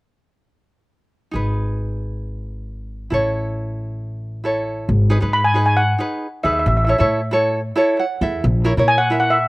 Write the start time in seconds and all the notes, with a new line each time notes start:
1.31 G#1 D#4 G#4
1.35 B4
3.10 A1 E4 A4 C#5
4.44 E4 A4 C#5
4.89 G#1
5.10 D#4 G#4 B4
5.21 G#2 D#4 G#4 B4
5.33 B5
5.44 G#5
5.54 D#4 G#4 B4
5.66 G#5
5.77 F#5
5.99 D#4 G#4 B4
6.43 D#2 D#4 G#4 B4 E5
6.53 E5
6.59 E5
6.66 A1 E5
6.77 E5
6.85 E4 A4 E5
6.89 C#5 E5
6.98 A2 E4 A4 C#5 E5
7.31 E4 A4 C#5
7.76 E4 A4 C#5
7.99 F#5
8.21 E2 E4 A4 E5
8.44 A#1
8.64 E4 A#4 C#5
8.77 A#2 E4 A#4 C#5
8.88 G#5
8.98 F#5
9.10 E4 A#4 E5
9.20 F#5
9.30 E5